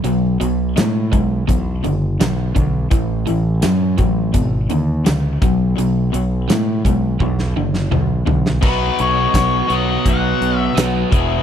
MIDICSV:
0, 0, Header, 1, 6, 480
1, 0, Start_track
1, 0, Tempo, 714286
1, 38, Time_signature, 4, 2, 24, 8
1, 7680, End_track
2, 0, Start_track
2, 0, Title_t, "Lead electric guitar"
2, 0, Program_c, 0, 29
2, 5802, Note_on_c, 0, 71, 68
2, 6048, Note_off_c, 0, 71, 0
2, 6054, Note_on_c, 0, 73, 80
2, 6538, Note_on_c, 0, 75, 85
2, 6541, Note_off_c, 0, 73, 0
2, 6775, Note_off_c, 0, 75, 0
2, 6782, Note_on_c, 0, 78, 99
2, 7111, Note_off_c, 0, 78, 0
2, 7111, Note_on_c, 0, 76, 99
2, 7223, Note_off_c, 0, 76, 0
2, 7680, End_track
3, 0, Start_track
3, 0, Title_t, "Overdriven electric guitar"
3, 0, Program_c, 1, 29
3, 7224, Note_on_c, 1, 47, 67
3, 7237, Note_on_c, 1, 54, 66
3, 7248, Note_on_c, 1, 59, 74
3, 7456, Note_off_c, 1, 47, 0
3, 7463, Note_off_c, 1, 54, 0
3, 7680, Note_off_c, 1, 59, 0
3, 7680, End_track
4, 0, Start_track
4, 0, Title_t, "Overdriven electric guitar"
4, 0, Program_c, 2, 29
4, 33, Note_on_c, 2, 47, 65
4, 33, Note_on_c, 2, 54, 76
4, 252, Note_off_c, 2, 47, 0
4, 252, Note_off_c, 2, 54, 0
4, 269, Note_on_c, 2, 47, 74
4, 274, Note_on_c, 2, 54, 79
4, 490, Note_off_c, 2, 47, 0
4, 493, Note_off_c, 2, 54, 0
4, 511, Note_on_c, 2, 47, 70
4, 514, Note_on_c, 2, 56, 85
4, 731, Note_off_c, 2, 47, 0
4, 733, Note_off_c, 2, 56, 0
4, 754, Note_on_c, 2, 47, 59
4, 759, Note_on_c, 2, 56, 76
4, 973, Note_off_c, 2, 47, 0
4, 976, Note_off_c, 2, 56, 0
4, 992, Note_on_c, 2, 40, 75
4, 992, Note_on_c, 2, 47, 76
4, 1212, Note_off_c, 2, 47, 0
4, 1213, Note_off_c, 2, 40, 0
4, 1229, Note_on_c, 2, 40, 74
4, 1239, Note_on_c, 2, 50, 78
4, 1451, Note_off_c, 2, 40, 0
4, 1456, Note_off_c, 2, 50, 0
4, 1476, Note_on_c, 2, 40, 77
4, 1480, Note_on_c, 2, 50, 92
4, 1695, Note_off_c, 2, 40, 0
4, 1697, Note_off_c, 2, 50, 0
4, 1714, Note_on_c, 2, 40, 67
4, 1715, Note_on_c, 2, 50, 68
4, 1934, Note_off_c, 2, 40, 0
4, 1934, Note_off_c, 2, 50, 0
4, 1952, Note_on_c, 2, 45, 68
4, 1958, Note_on_c, 2, 52, 76
4, 2173, Note_off_c, 2, 45, 0
4, 2176, Note_off_c, 2, 52, 0
4, 2196, Note_on_c, 2, 45, 78
4, 2196, Note_on_c, 2, 52, 83
4, 2415, Note_off_c, 2, 45, 0
4, 2415, Note_off_c, 2, 52, 0
4, 2433, Note_on_c, 2, 45, 64
4, 2438, Note_on_c, 2, 54, 81
4, 2654, Note_off_c, 2, 45, 0
4, 2656, Note_off_c, 2, 54, 0
4, 2676, Note_on_c, 2, 45, 61
4, 2676, Note_on_c, 2, 54, 78
4, 2895, Note_off_c, 2, 45, 0
4, 2895, Note_off_c, 2, 54, 0
4, 2910, Note_on_c, 2, 40, 68
4, 2915, Note_on_c, 2, 47, 82
4, 3132, Note_off_c, 2, 40, 0
4, 3135, Note_off_c, 2, 47, 0
4, 3155, Note_on_c, 2, 40, 73
4, 3157, Note_on_c, 2, 50, 82
4, 3375, Note_off_c, 2, 40, 0
4, 3376, Note_off_c, 2, 50, 0
4, 3390, Note_on_c, 2, 40, 78
4, 3393, Note_on_c, 2, 50, 88
4, 3612, Note_off_c, 2, 40, 0
4, 3614, Note_off_c, 2, 50, 0
4, 3639, Note_on_c, 2, 47, 68
4, 3643, Note_on_c, 2, 54, 73
4, 3857, Note_off_c, 2, 47, 0
4, 3859, Note_off_c, 2, 54, 0
4, 3868, Note_on_c, 2, 47, 69
4, 3874, Note_on_c, 2, 54, 86
4, 4091, Note_off_c, 2, 47, 0
4, 4094, Note_off_c, 2, 54, 0
4, 4113, Note_on_c, 2, 47, 79
4, 4120, Note_on_c, 2, 54, 80
4, 4334, Note_off_c, 2, 47, 0
4, 4337, Note_off_c, 2, 54, 0
4, 4363, Note_on_c, 2, 56, 89
4, 4366, Note_on_c, 2, 47, 66
4, 4578, Note_off_c, 2, 56, 0
4, 4580, Note_off_c, 2, 47, 0
4, 4610, Note_on_c, 2, 47, 62
4, 4612, Note_on_c, 2, 56, 66
4, 4822, Note_off_c, 2, 47, 0
4, 4823, Note_off_c, 2, 56, 0
4, 4851, Note_on_c, 2, 40, 68
4, 4853, Note_on_c, 2, 47, 76
4, 5062, Note_off_c, 2, 40, 0
4, 5063, Note_off_c, 2, 47, 0
4, 5086, Note_on_c, 2, 40, 70
4, 5087, Note_on_c, 2, 50, 67
4, 5299, Note_off_c, 2, 40, 0
4, 5300, Note_off_c, 2, 50, 0
4, 5319, Note_on_c, 2, 40, 84
4, 5322, Note_on_c, 2, 50, 78
4, 5536, Note_off_c, 2, 40, 0
4, 5538, Note_off_c, 2, 50, 0
4, 5548, Note_on_c, 2, 40, 59
4, 5553, Note_on_c, 2, 50, 66
4, 5770, Note_off_c, 2, 40, 0
4, 5773, Note_off_c, 2, 50, 0
4, 5786, Note_on_c, 2, 47, 79
4, 5790, Note_on_c, 2, 54, 74
4, 5802, Note_on_c, 2, 59, 84
4, 5807, Note_on_c, 2, 63, 92
4, 5809, Note_on_c, 2, 66, 93
4, 6493, Note_off_c, 2, 66, 0
4, 6498, Note_off_c, 2, 47, 0
4, 6500, Note_off_c, 2, 54, 0
4, 6501, Note_on_c, 2, 66, 69
4, 6502, Note_off_c, 2, 63, 0
4, 6510, Note_on_c, 2, 63, 66
4, 6513, Note_off_c, 2, 59, 0
4, 6516, Note_on_c, 2, 59, 67
4, 6522, Note_on_c, 2, 54, 64
4, 6526, Note_on_c, 2, 47, 61
4, 7454, Note_off_c, 2, 66, 0
4, 7457, Note_off_c, 2, 47, 0
4, 7458, Note_off_c, 2, 63, 0
4, 7464, Note_off_c, 2, 54, 0
4, 7464, Note_on_c, 2, 40, 69
4, 7465, Note_on_c, 2, 47, 87
4, 7472, Note_on_c, 2, 52, 81
4, 7477, Note_off_c, 2, 59, 0
4, 7479, Note_on_c, 2, 59, 89
4, 7487, Note_on_c, 2, 68, 80
4, 7488, Note_on_c, 2, 64, 89
4, 7680, Note_off_c, 2, 40, 0
4, 7680, Note_off_c, 2, 47, 0
4, 7680, Note_off_c, 2, 52, 0
4, 7680, Note_off_c, 2, 59, 0
4, 7680, Note_off_c, 2, 64, 0
4, 7680, Note_off_c, 2, 68, 0
4, 7680, End_track
5, 0, Start_track
5, 0, Title_t, "Fingered electric bass"
5, 0, Program_c, 3, 33
5, 28, Note_on_c, 3, 35, 73
5, 250, Note_off_c, 3, 35, 0
5, 277, Note_on_c, 3, 35, 74
5, 495, Note_off_c, 3, 35, 0
5, 528, Note_on_c, 3, 45, 77
5, 742, Note_off_c, 3, 45, 0
5, 757, Note_on_c, 3, 35, 73
5, 976, Note_off_c, 3, 35, 0
5, 1001, Note_on_c, 3, 35, 84
5, 1219, Note_off_c, 3, 35, 0
5, 1243, Note_on_c, 3, 30, 68
5, 1459, Note_off_c, 3, 30, 0
5, 1484, Note_on_c, 3, 35, 83
5, 1700, Note_off_c, 3, 35, 0
5, 1722, Note_on_c, 3, 35, 85
5, 1939, Note_off_c, 3, 35, 0
5, 1961, Note_on_c, 3, 33, 76
5, 2179, Note_off_c, 3, 33, 0
5, 2212, Note_on_c, 3, 33, 80
5, 2425, Note_off_c, 3, 33, 0
5, 2446, Note_on_c, 3, 42, 81
5, 2662, Note_off_c, 3, 42, 0
5, 2680, Note_on_c, 3, 33, 78
5, 2898, Note_off_c, 3, 33, 0
5, 2919, Note_on_c, 3, 32, 92
5, 3138, Note_off_c, 3, 32, 0
5, 3162, Note_on_c, 3, 39, 76
5, 3379, Note_off_c, 3, 39, 0
5, 3410, Note_on_c, 3, 37, 81
5, 3624, Note_off_c, 3, 37, 0
5, 3643, Note_on_c, 3, 35, 79
5, 3860, Note_off_c, 3, 35, 0
5, 3887, Note_on_c, 3, 35, 68
5, 4102, Note_off_c, 3, 35, 0
5, 4126, Note_on_c, 3, 35, 85
5, 4342, Note_off_c, 3, 35, 0
5, 4367, Note_on_c, 3, 45, 77
5, 4582, Note_off_c, 3, 45, 0
5, 4605, Note_on_c, 3, 35, 68
5, 4821, Note_off_c, 3, 35, 0
5, 4845, Note_on_c, 3, 35, 92
5, 5061, Note_off_c, 3, 35, 0
5, 5084, Note_on_c, 3, 30, 68
5, 5300, Note_off_c, 3, 30, 0
5, 5319, Note_on_c, 3, 35, 86
5, 5537, Note_off_c, 3, 35, 0
5, 5561, Note_on_c, 3, 35, 81
5, 5778, Note_off_c, 3, 35, 0
5, 5797, Note_on_c, 3, 35, 74
5, 5976, Note_off_c, 3, 35, 0
5, 6047, Note_on_c, 3, 35, 77
5, 6222, Note_off_c, 3, 35, 0
5, 6279, Note_on_c, 3, 35, 80
5, 6457, Note_off_c, 3, 35, 0
5, 6517, Note_on_c, 3, 35, 65
5, 6696, Note_off_c, 3, 35, 0
5, 6762, Note_on_c, 3, 35, 84
5, 6938, Note_off_c, 3, 35, 0
5, 6996, Note_on_c, 3, 35, 74
5, 7174, Note_off_c, 3, 35, 0
5, 7235, Note_on_c, 3, 35, 75
5, 7413, Note_off_c, 3, 35, 0
5, 7476, Note_on_c, 3, 28, 76
5, 7654, Note_off_c, 3, 28, 0
5, 7680, End_track
6, 0, Start_track
6, 0, Title_t, "Drums"
6, 29, Note_on_c, 9, 42, 74
6, 96, Note_off_c, 9, 42, 0
6, 276, Note_on_c, 9, 42, 54
6, 344, Note_off_c, 9, 42, 0
6, 520, Note_on_c, 9, 42, 73
6, 520, Note_on_c, 9, 54, 91
6, 523, Note_on_c, 9, 38, 98
6, 587, Note_off_c, 9, 42, 0
6, 587, Note_off_c, 9, 54, 0
6, 590, Note_off_c, 9, 38, 0
6, 757, Note_on_c, 9, 36, 68
6, 759, Note_on_c, 9, 42, 50
6, 824, Note_off_c, 9, 36, 0
6, 826, Note_off_c, 9, 42, 0
6, 999, Note_on_c, 9, 36, 73
6, 1002, Note_on_c, 9, 42, 69
6, 1066, Note_off_c, 9, 36, 0
6, 1069, Note_off_c, 9, 42, 0
6, 1238, Note_on_c, 9, 42, 52
6, 1306, Note_off_c, 9, 42, 0
6, 1482, Note_on_c, 9, 42, 69
6, 1482, Note_on_c, 9, 54, 91
6, 1486, Note_on_c, 9, 38, 98
6, 1550, Note_off_c, 9, 42, 0
6, 1550, Note_off_c, 9, 54, 0
6, 1553, Note_off_c, 9, 38, 0
6, 1720, Note_on_c, 9, 36, 71
6, 1720, Note_on_c, 9, 42, 50
6, 1787, Note_off_c, 9, 36, 0
6, 1788, Note_off_c, 9, 42, 0
6, 1956, Note_on_c, 9, 42, 75
6, 1958, Note_on_c, 9, 36, 99
6, 2023, Note_off_c, 9, 42, 0
6, 2025, Note_off_c, 9, 36, 0
6, 2198, Note_on_c, 9, 42, 54
6, 2265, Note_off_c, 9, 42, 0
6, 2434, Note_on_c, 9, 42, 76
6, 2434, Note_on_c, 9, 54, 94
6, 2437, Note_on_c, 9, 38, 90
6, 2501, Note_off_c, 9, 42, 0
6, 2501, Note_off_c, 9, 54, 0
6, 2504, Note_off_c, 9, 38, 0
6, 2674, Note_on_c, 9, 42, 53
6, 2679, Note_on_c, 9, 36, 68
6, 2741, Note_off_c, 9, 42, 0
6, 2746, Note_off_c, 9, 36, 0
6, 2915, Note_on_c, 9, 42, 75
6, 2918, Note_on_c, 9, 36, 70
6, 2983, Note_off_c, 9, 42, 0
6, 2986, Note_off_c, 9, 36, 0
6, 3156, Note_on_c, 9, 42, 57
6, 3223, Note_off_c, 9, 42, 0
6, 3400, Note_on_c, 9, 42, 76
6, 3400, Note_on_c, 9, 54, 92
6, 3404, Note_on_c, 9, 38, 102
6, 3467, Note_off_c, 9, 42, 0
6, 3467, Note_off_c, 9, 54, 0
6, 3471, Note_off_c, 9, 38, 0
6, 3641, Note_on_c, 9, 36, 95
6, 3643, Note_on_c, 9, 42, 60
6, 3708, Note_off_c, 9, 36, 0
6, 3710, Note_off_c, 9, 42, 0
6, 3886, Note_on_c, 9, 42, 75
6, 3954, Note_off_c, 9, 42, 0
6, 4126, Note_on_c, 9, 42, 62
6, 4193, Note_off_c, 9, 42, 0
6, 4366, Note_on_c, 9, 42, 78
6, 4366, Note_on_c, 9, 54, 101
6, 4369, Note_on_c, 9, 38, 90
6, 4433, Note_off_c, 9, 42, 0
6, 4433, Note_off_c, 9, 54, 0
6, 4436, Note_off_c, 9, 38, 0
6, 4603, Note_on_c, 9, 36, 70
6, 4609, Note_on_c, 9, 42, 63
6, 4670, Note_off_c, 9, 36, 0
6, 4676, Note_off_c, 9, 42, 0
6, 4840, Note_on_c, 9, 36, 74
6, 4907, Note_off_c, 9, 36, 0
6, 4965, Note_on_c, 9, 38, 53
6, 5032, Note_off_c, 9, 38, 0
6, 5203, Note_on_c, 9, 38, 57
6, 5270, Note_off_c, 9, 38, 0
6, 5321, Note_on_c, 9, 45, 65
6, 5389, Note_off_c, 9, 45, 0
6, 5559, Note_on_c, 9, 43, 86
6, 5626, Note_off_c, 9, 43, 0
6, 5685, Note_on_c, 9, 38, 76
6, 5752, Note_off_c, 9, 38, 0
6, 5797, Note_on_c, 9, 36, 102
6, 5799, Note_on_c, 9, 49, 90
6, 5864, Note_off_c, 9, 36, 0
6, 5866, Note_off_c, 9, 49, 0
6, 6039, Note_on_c, 9, 42, 61
6, 6107, Note_off_c, 9, 42, 0
6, 6277, Note_on_c, 9, 36, 69
6, 6282, Note_on_c, 9, 42, 83
6, 6282, Note_on_c, 9, 54, 105
6, 6285, Note_on_c, 9, 38, 105
6, 6344, Note_off_c, 9, 36, 0
6, 6349, Note_off_c, 9, 42, 0
6, 6349, Note_off_c, 9, 54, 0
6, 6352, Note_off_c, 9, 38, 0
6, 6518, Note_on_c, 9, 42, 61
6, 6585, Note_off_c, 9, 42, 0
6, 6758, Note_on_c, 9, 36, 76
6, 6759, Note_on_c, 9, 42, 80
6, 6825, Note_off_c, 9, 36, 0
6, 6827, Note_off_c, 9, 42, 0
6, 7000, Note_on_c, 9, 42, 57
6, 7068, Note_off_c, 9, 42, 0
6, 7240, Note_on_c, 9, 42, 93
6, 7240, Note_on_c, 9, 54, 103
6, 7243, Note_on_c, 9, 38, 102
6, 7307, Note_off_c, 9, 42, 0
6, 7307, Note_off_c, 9, 54, 0
6, 7311, Note_off_c, 9, 38, 0
6, 7475, Note_on_c, 9, 36, 99
6, 7480, Note_on_c, 9, 42, 66
6, 7542, Note_off_c, 9, 36, 0
6, 7547, Note_off_c, 9, 42, 0
6, 7680, End_track
0, 0, End_of_file